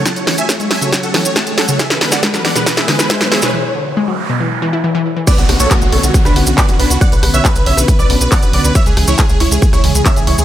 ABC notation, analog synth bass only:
X:1
M:4/4
L:1/16
Q:1/4=138
K:Bdor
V:1 name="Analog synth bass" clef=bass
z16 | z16 | z16 | z B,,, B,,, B,,, z B,,, B,,, B,,, z B,,, B,,, B,,, z F,,, B,,, C,, |
z B,,, B,,, B,,, z B,,, B,,, B,,, z B,,, B,,, B,,, z F,,, B,,, C,, | z C,, C,, C,, z C,, C,, C,, z C,, C,, C,, z G,,, C,, D,, |]